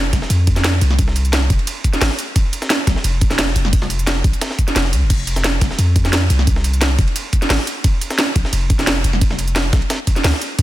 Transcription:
0.00 0.12 F1 medium
0.13 0.21 F1 loud
0.13 kick medium
0.13 snare soft
0.13 closed hi-hat medium
0.13 ride medium
0.22 snare soft
0.30 0.80 F2 medium
0.30 closed hi-hat medium
0.30 ride medium
0.47 kick loud
0.47 closed hi-hat medium
0.47 ride medium
0.56 snare medium
0.56 snare soft
0.56 closed hi-hat soft
0.64 snare loud
0.64 closed hi-hat medium
0.64 ride medium
0.73 snare soft
0.81 1.49 C2 medium
0.81 closed hi-hat medium
0.81 ride medium
0.91 snare soft
0.99 kick loud
0.99 closed hi-hat medium
0.99 ride medium
1.08 snare soft
1.16 closed hi-hat medium
1.16 ride medium
1.25 closed hi-hat soft
1.33 snare loud
1.33 closed hi-hat medium
1.33 ride medium
1.50 1.58 F1 loud
1.50 kick loud
1.50 closed hi-hat medium
1.50 ride medium
1.59 ride soft
1.67 closed hi-hat medium
1.67 ride medium
1.84 kick medium
1.84 closed hi-hat medium
1.93 snare soft
1.93 closed hi-hat soft
2.01 2.10 G#1 medium
2.01 snare loud
2.01 closed hi-hat medium
2.01 open hi-hat medium
2.10 snare soft
2.19 closed hi-hat medium
2.19 ride medium
2.36 kick loud
2.36 closed hi-hat medium
2.36 ride medium
2.53 closed hi-hat medium
2.53 ride medium
2.62 snare medium
2.62 closed hi-hat soft
2.70 snare loud
2.70 closed hi-hat medium
2.70 ride medium
2.87 2.95 A#1 loud
2.87 kick medium
2.87 snare soft
2.87 closed hi-hat medium
2.87 ride medium
2.96 snare soft
3.04 3.54 F1 medium
3.04 closed hi-hat medium
3.04 ride medium
3.21 kick loud
3.21 closed hi-hat medium
3.21 ride medium
3.30 snare medium
3.30 snare soft
3.30 closed hi-hat soft
3.38 snare loud
3.38 closed hi-hat medium
3.38 ride medium
3.48 snare soft
3.56 4.23 F1 medium
3.56 closed hi-hat medium
3.56 ride medium
3.65 snare soft
3.73 kick loud
3.73 closed hi-hat loud
3.73 ride medium
3.82 snare soft
3.90 closed hi-hat medium
3.90 ride medium
3.99 closed hi-hat soft
4.07 snare loud
4.07 closed hi-hat medium
4.07 ride medium
4.24 4.32 A#1 loud
4.24 kick loud
4.24 closed hi-hat medium
4.24 ride medium
4.33 closed hi-hat soft
4.33 ride soft
4.41 snare loud
4.41 closed hi-hat medium
4.41 ride medium
4.50 snare soft
4.59 kick medium
4.59 closed hi-hat medium
4.68 snare soft
4.68 closed hi-hat soft
4.76 4.94 F1 medium
4.76 snare soft
4.76 snare loud
4.76 closed hi-hat medium
4.76 ride medium
4.85 snare soft
4.93 5.03 D2 medium
4.93 closed hi-hat medium
4.93 ride medium
5.02 5.60 F1 medium
5.10 kick loud
5.10 closed hi-hat medium
5.10 crash medium
5.10 ride medium
5.27 closed hi-hat medium
5.27 ride medium
5.36 snare medium
5.36 closed hi-hat soft
5.44 snare loud
5.44 closed hi-hat medium
5.44 ride medium
5.61 5.70 F1 loud
5.61 kick medium
5.61 snare soft
5.61 closed hi-hat medium
5.61 ride medium
5.71 snare soft
5.79 6.29 F2 medium
5.79 closed hi-hat medium
5.79 ride medium
5.96 kick loud
5.96 closed hi-hat medium
5.96 ride medium
6.05 snare soft
6.05 snare medium
6.05 closed hi-hat soft
6.13 snare loud
6.13 closed hi-hat medium
6.13 ride medium
6.22 snare soft
6.30 6.97 C2 medium
6.30 closed hi-hat medium
6.30 ride medium
6.39 snare soft
6.47 kick loud
6.47 closed hi-hat medium
6.47 ride medium
6.56 snare soft
6.64 closed hi-hat medium
6.64 ride medium
6.73 closed hi-hat soft
6.81 snare loud
6.81 closed hi-hat medium
6.81 ride medium
6.99 7.07 F1 loud
6.99 kick loud
6.99 closed hi-hat medium
6.99 ride medium
7.08 ride soft
7.16 closed hi-hat medium
7.16 ride medium
7.33 kick medium
7.33 closed hi-hat medium
7.42 snare soft
7.42 closed hi-hat soft
7.50 7.58 G#1 medium
7.50 snare loud
7.50 closed hi-hat medium
7.50 open hi-hat medium
7.59 snare soft
7.67 closed hi-hat medium
7.67 ride medium
7.84 kick loud
7.84 closed hi-hat medium
7.84 ride medium
8.01 closed hi-hat medium
8.01 ride medium
8.10 snare medium
8.10 closed hi-hat soft
8.18 snare loud
8.18 closed hi-hat medium
8.18 ride medium
8.36 8.44 A#1 loud
8.36 kick medium
8.36 closed hi-hat medium
8.36 ride medium
8.45 snare soft
8.53 9.03 F1 medium
8.53 closed hi-hat medium
8.53 ride medium
8.70 kick loud
8.70 closed hi-hat medium
8.70 ride medium
8.79 snare soft
8.79 snare medium
8.79 closed hi-hat soft
8.87 snare loud
8.87 closed hi-hat medium
8.87 ride medium
8.96 snare soft
9.04 9.72 F1 medium
9.04 closed hi-hat medium
9.04 ride medium
9.13 snare soft
9.21 kick loud
9.21 closed hi-hat medium
9.21 ride medium
9.30 snare soft
9.39 closed hi-hat medium
9.39 ride medium
9.48 closed hi-hat soft
9.56 snare loud
9.56 closed hi-hat medium
9.56 ride medium
9.73 9.81 A#1 loud
9.73 kick loud
9.73 snare loud
9.73 snare soft
9.73 closed hi-hat medium
9.73 ride medium
9.82 ride soft
9.90 snare loud
9.90 closed hi-hat medium
9.90 ride medium
10.07 kick medium
10.07 closed hi-hat medium
10.07 ride medium
10.16 snare soft
10.16 closed hi-hat soft
10.24 10.32 D2 medium
10.24 snare loud
10.24 closed hi-hat medium
10.24 open hi-hat medium
10.33 snare soft
10.41 closed hi-hat medium
10.41 ride medium
10.59 kick loud
10.59 closed hi-hat medium
10.59 ride medium

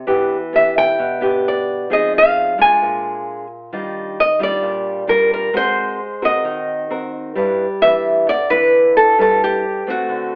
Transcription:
0.07 0.96 E3 medium
0.07 0.36 B3 medium
0.07 0.36 D4 soft
0.07 0.36 G4 medium
0.53 1.17 B3 medium
0.53 1.18 D4 soft
0.53 1.18 G4 soft
0.53 0.75 E5 medium
0.78 1.47 G5 loud
0.99 1.87 B2 medium
1.21 1.85 B3 medium
1.21 1.86 D4 medium
1.21 1.86 G4 medium
1.48 1.88 D5 medium
1.90 2.58 F3 medium
1.90 2.54 C4 medium
1.90 2.54 D#4 medium
1.90 2.55 G#4 medium
1.90 2.12 D#5 medium
2.18 2.61 F5 loud
2.58 3.45 G#3 medium
2.58 3.45 D4 soft
2.58 3.45 F4 medium
2.58 3.46 G#5 medium
2.82 3.70 A#2 medium
3.72 4.61 D#3 medium
3.72 4.17 G3 medium
3.72 4.17 D4 medium
3.72 4.17 F4 medium
4.20 4.42 D#5 medium
4.39 5.04 G3 medium
4.39 5.04 D4 medium
4.39 5.05 F4 medium
4.43 5.12 D5 medium
4.62 5.51 A#2 medium
5.07 5.49 G3 soft
5.07 5.50 D4 soft
5.07 5.50 F4 medium
5.07 5.32 A#4 medium
5.33 5.55 A#4 medium
5.53 6.42 G#3 medium
5.53 5.99 C4 soft
5.53 5.99 F#4 medium
5.53 5.99 A#4 medium
5.53 6.25 C5 medium
6.22 6.87 C4 soft
6.22 6.87 F#4 medium
6.22 6.87 A#4 medium
6.22 7.11 D#5 medium
6.45 7.33 D#3 medium
6.90 7.32 C4 soft
6.90 7.32 F#4 soft
6.90 7.33 A#4 medium
7.35 8.24 G3 medium
7.35 7.65 D4 soft
7.35 7.65 E4 medium
7.35 7.65 B4 medium
7.81 8.27 D4 soft
7.81 8.27 E4 soft
7.81 8.27 B4 medium
7.81 8.28 E5 loud
8.27 9.15 D3 medium
8.27 8.49 D5 loud
8.50 9.14 D4 medium
8.50 9.15 E4 medium
8.50 8.96 B4 medium
8.50 9.15 B4 medium
8.97 9.17 A4 medium
9.18 9.86 G3 medium
9.18 9.63 D4 soft
9.18 9.63 E4 soft
9.18 9.41 A4 medium
9.18 9.63 B4 medium
9.44 9.89 G4 medium
9.87 10.35 A3 medium
9.87 10.35 C4 medium
9.87 10.35 F#4 medium
10.09 10.35 D3 medium

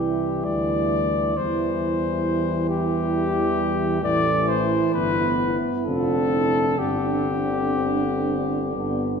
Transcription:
0.00 0.42 C2 soft
0.00 1.34 E3 soft
0.00 1.35 G3 soft
0.00 1.34 E4 soft
0.00 0.46 G4 soft
0.45 1.40 D2 soft
0.45 1.39 D5 medium
1.37 4.03 E2 soft
1.37 3.99 E3 soft
1.37 3.99 G3 soft
1.37 3.99 E4 soft
1.37 2.69 C5 soft
2.69 4.00 G4 medium
4.02 4.78 A1 soft
4.02 5.55 E3 medium
4.02 4.93 A3 soft
4.02 5.83 E4 medium
4.02 4.50 D5 medium
4.48 4.93 C5 medium
4.94 5.57 G1 soft
4.94 5.84 B3 medium
4.94 5.57 B4 medium
5.85 6.82 F1 soft
5.85 6.76 D3 medium
5.85 6.78 C4 soft
5.85 6.33 F4 soft
5.85 6.80 A4 medium
6.31 6.66 E4 soft
6.79 8.75 G1 soft
6.79 8.72 D3 soft
6.79 8.72 C4 soft
6.79 8.72 D4 soft
6.79 9.20 G4 medium
8.74 9.20 G1 soft
8.74 9.20 D3 soft
8.74 9.20 B3 soft
8.74 9.20 D4 soft

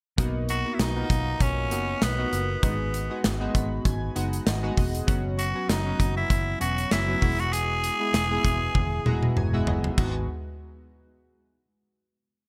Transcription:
0.17 0.62 B1 loud
0.17 0.51 A#3 medium
0.17 0.51 B3 medium
0.17 0.51 D#4 medium
0.17 0.52 F#4 medium
0.17 kick loud
0.17 closed hi-hat medium
0.49 0.75 F#4 medium
0.49 closed hi-hat medium
0.65 0.86 A#3 medium
0.65 0.86 B3 medium
0.65 0.87 D#4 medium
0.65 0.87 F#4 medium
0.74 0.82 E4 medium
0.79 1.01 B1 loud
0.79 1.43 D#4 medium
0.79 snare loud
0.79 closed hi-hat medium
0.96 1.50 A#3 medium
0.96 1.50 B3 medium
0.96 1.50 D#4 medium
0.96 1.02 F4 medium
1.04 1.54 F#4 medium
1.10 1.32 B1 medium
1.10 kick medium
1.10 closed hi-hat medium
1.40 1.71 B1 medium
1.40 2.04 C#4 medium
1.40 kick medium
1.40 closed hi-hat medium
1.71 1.93 F#1 medium
1.71 2.04 A#3 medium
1.71 2.04 B3 medium
1.71 2.04 D#4 medium
1.71 2.05 F#4 medium
1.71 closed hi-hat medium
2.02 2.24 B1 loud
2.02 2.63 B3 medium
2.02 snare loud
2.02 closed hi-hat medium
2.18 2.51 B3 medium
2.18 2.51 D#4 medium
2.18 2.52 F#4 medium
2.18 2.51 A#4 medium
2.33 2.55 F#1 medium
2.33 closed hi-hat medium
2.63 3.07 G#1 loud
2.63 2.96 G#3 medium
2.63 2.96 B3 medium
2.63 3.21 B3 medium
2.63 2.96 D#4 medium
2.63 2.96 F#4 medium
2.63 kick loud
2.63 closed hi-hat medium
2.94 closed hi-hat medium
3.10 3.31 G#3 medium
3.10 3.31 B3 medium
3.10 3.31 D#4 medium
3.10 3.32 F#4 medium
3.24 3.46 G#1 medium
3.24 snare loud
3.24 closed hi-hat medium
3.40 3.94 G#3 medium
3.40 3.95 B3 medium
3.40 3.95 D#4 medium
3.40 3.95 F#4 medium
3.54 3.77 G#1 medium
3.54 3.83 B5 medium
3.54 kick medium
3.54 closed hi-hat medium
3.85 4.07 G#1 loud
3.85 4.14 G#5 medium
3.85 kick medium
3.85 closed hi-hat medium
4.15 4.38 F#1 medium
4.15 4.49 G#3 medium
4.15 4.49 B3 medium
4.15 4.49 D#4 medium
4.15 4.49 F#4 medium
4.15 4.44 F#5 medium
4.15 closed hi-hat medium
4.33 closed hi-hat soft
4.46 4.69 G#1 loud
4.46 4.75 D#5 medium
4.46 snare loud
4.46 closed hi-hat medium
4.63 4.96 G#3 medium
4.63 4.96 B3 medium
4.63 4.96 D#4 medium
4.63 4.96 F#4 medium
4.77 5.00 E1 medium
4.77 5.06 D#5 medium
4.77 kick medium
4.77 open hi-hat medium
4.95 closed hi-hat medium
5.07 5.52 F#1 loud
5.07 5.40 F#3 medium
5.07 5.41 B3 medium
5.07 5.41 C#4 medium
5.07 5.41 F#4 medium
5.07 kick loud
5.07 closed hi-hat medium
5.39 5.70 F#4 medium
5.39 closed hi-hat medium
5.55 5.76 F#3 medium
5.55 5.76 B3 medium
5.55 5.76 C#4 medium
5.55 5.77 F#4 medium
5.69 5.91 F#1 loud
5.69 6.16 D#4 medium
5.69 snare loud
5.69 closed hi-hat medium
5.85 6.40 F#3 medium
5.85 6.40 B3 medium
5.85 6.40 C#4 medium
5.85 6.40 F#4 medium
6.00 6.22 F#1 loud
6.00 kick medium
6.00 closed hi-hat medium
6.17 6.58 E4 medium
6.30 6.52 F#1 loud
6.30 kick medium
6.30 closed hi-hat medium
6.60 6.83 E1 medium
6.60 6.93 F#3 medium
6.60 6.94 B3 medium
6.60 6.94 C#4 medium
6.60 6.93 F#4 medium
6.60 6.94 F#4 medium
6.60 closed hi-hat medium
6.78 closed hi-hat soft
6.91 7.14 F#1 loud
6.91 7.41 E4 medium
6.91 snare loud
6.91 closed hi-hat medium
7.08 7.22 F#3 medium
7.08 7.21 B3 medium
7.08 7.22 C#4 medium
7.08 7.22 F#4 medium
7.22 7.88 E1 medium
7.22 7.83 G#3 medium
7.22 7.83 B3 medium
7.22 7.84 E4 medium
7.22 7.84 F#4 medium
7.22 kick medium
7.22 open hi-hat medium
7.39 7.54 F#4 medium
7.39 closed hi-hat medium
7.53 9.36 G#4 loud
7.53 closed hi-hat medium
7.84 closed hi-hat medium
8.00 8.21 G#3 medium
8.00 8.21 B3 medium
8.00 8.21 E4 medium
8.00 8.21 G#4 medium
8.14 8.36 E1 loud
8.14 snare loud
8.14 closed hi-hat medium
8.31 8.85 G#3 medium
8.31 8.85 B3 medium
8.31 8.85 E4 medium
8.31 8.85 G#4 loud
8.45 8.67 E1 medium
8.45 kick medium
8.45 closed hi-hat medium
8.75 8.97 E1 loud
8.75 kick medium
8.75 high tom medium
9.05 9.28 E1 medium
9.05 9.39 G#3 medium
9.05 9.39 B3 medium
9.05 9.39 E4 medium
9.05 9.39 F#4 medium
9.05 9.35 A#5 medium
9.05 mid tom medium
9.23 mid tom medium
9.37 9.67 E1 loud
9.37 9.53 G#5 medium
9.37 mid tom medium
9.53 9.86 G#3 medium
9.53 9.86 B3 medium
9.53 9.86 E4 medium
9.53 9.86 F#4 medium
9.53 9.67 E5 medium
9.67 9.89 F#1 medium
9.67 9.96 D#5 medium
9.67 floor tom medium
9.84 floor tom medium
9.98 10.26 G#1 medium
9.98 10.26 G#3 medium
9.98 10.26 B3 medium
9.98 10.26 D#4 medium
9.98 10.26 F#4 medium
9.98 kick loud
9.98 crash medium

